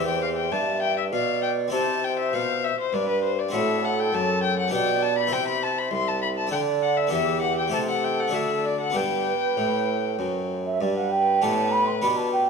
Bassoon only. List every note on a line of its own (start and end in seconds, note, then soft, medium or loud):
0.00 0.51 E2 medium
0.52 1.14 G2 medium
1.12 1.71 B2 medium
1.72 2.34 C3 medium
2.33 2.72 B2 medium
2.93 3.49 G2 medium
3.53 4.11 A2 medium
4.13 4.71 F#2 medium
4.72 5.33 B2 medium
5.32 5.91 C3 medium
5.91 6.50 C2 medium
6.52 7.11 D3 medium
7.12 7.71 E2 medium
7.72 8.34 C3 medium
8.33 8.94 D3 medium
8.95 9.34 G2 medium
9.57 10.15 A2 medium
10.19 10.80 F#2 medium
10.81 11.38 G2 medium
11.42 12.01 A2 medium
12.03 12.50 B2 medium